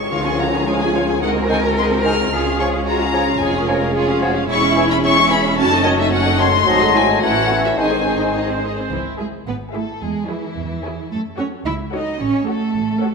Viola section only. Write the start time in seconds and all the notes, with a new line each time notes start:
0.12 G#3 F4
0.25 C#4 G#4
0.39 G#3 F4
0.53 C#4 G#4
0.66 G#3 F4
0.80 C#4 G#4
0.94 G#3 F4
1.08 C#4 G#4
1.21 D#4 G#4
1.34 C4 F#4
1.48 D#4 G#4
1.62 C4 F#4
1.77 D#4 G#4
1.90 C4 F#4
2.04 D#4 G#4
2.18 C4 F#4
2.32 F4 G#4
2.46 C#4 F4
2.60 F4 G#4
2.74 C#4 F4
2.87 F4 G#4
3.00 C#4 F4
3.14 F4 G#4
3.28 C#4 F4
3.41 F4 G#4
3.55 C#4 F4
3.68 F4 G#4
3.82 C#4 F4
3.94 F4 G#4
4.08 C#4 F4
4.22 F4 G#4
4.36 C#4 F4
4.48 E4 G#4
4.62 C#4 E4
4.75 E4 G#4
4.89 C#4 E4
5.02 E4 G#4
5.16 C#4 E4
5.29 E4 G#4
5.44 C#4 E4
5.58 C#4 F#4
5.71 C#4 D#4
5.84 C#4 F#4
5.98 C#4 D#4
6.12 C#4 F#4
6.26 C#4 D#4
6.39 C#4 F#4
6.53 C#4 D#4
6.67 C4 F#4
6.81 D#4 G#4
6.94 C4 F#4
7.08 D#4 G#4
7.21 A3 E4
7.35 C#4 F#4
7.50 A3 E4
7.64 C#4 F#4
7.78 D#4 G#4
7.91 C4 C5
8.05 D#4 G#4
8.20 C4 C5
8.35 D#4 G#4
8.49 C4 C5
8.64 D#4 G#4
8.77 C4 C5
9.19 E4 G#4
9.73 E4 G#4
10.29 E4 G#4
10.84 E4 G#4
11.38 F#4 A4
11.93 F#4 A4
12.46 F#4 A4
13.01 F#4 A4